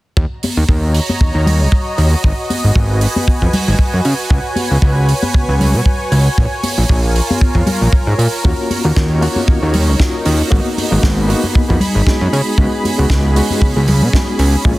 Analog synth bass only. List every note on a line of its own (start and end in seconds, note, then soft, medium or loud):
0.17 0.26 D#2 medium
0.57 0.64 D#2 medium
0.69 1.00 D#2 medium
1.21 1.32 D#2 soft
1.35 1.62 D#2 medium
1.61 1.68 C#2 medium
1.98 2.15 D#2 medium
2.24 2.33 G#1 medium
2.64 2.71 G#1 medium
2.75 3.07 G#1 medium
3.42 3.49 F2 medium
3.68 3.75 G#1 medium
3.94 4.00 F#2 medium
4.05 4.14 C#3 medium
4.30 4.39 C#2 loud
4.71 4.78 C#2 medium
4.82 5.13 C#2 medium
5.34 5.46 C#2 soft
5.48 5.76 C#2 medium
5.74 5.81 B2 medium
6.12 6.29 C#2 medium
6.38 6.47 A#1 medium
6.78 6.85 A#1 medium
6.90 7.21 A#1 medium
7.55 7.62 F2 medium
7.81 7.88 A#1 medium
8.07 8.14 G#2 medium
8.18 8.27 A#2 medium
8.45 8.54 D#2 medium
8.85 8.92 D#2 medium
8.96 9.28 D#2 medium
9.48 9.60 D#2 soft
9.62 9.90 D#2 medium
9.88 9.95 C#2 medium
10.26 10.43 D#2 medium
10.52 10.60 G#1 loud
10.92 10.99 G#1 medium
11.03 11.34 G#1 medium
11.70 11.77 F2 medium
11.95 12.02 G#1 medium
12.21 12.28 F#2 loud
12.33 12.41 C#3 medium
12.58 12.67 C#2 loud
12.99 13.06 C#2 medium
13.10 13.41 C#2 medium
13.62 13.73 C#2 soft
13.76 14.03 C#2 medium
14.02 14.09 B2 medium
14.39 14.56 C#2 medium
14.65 14.74 A#1 loud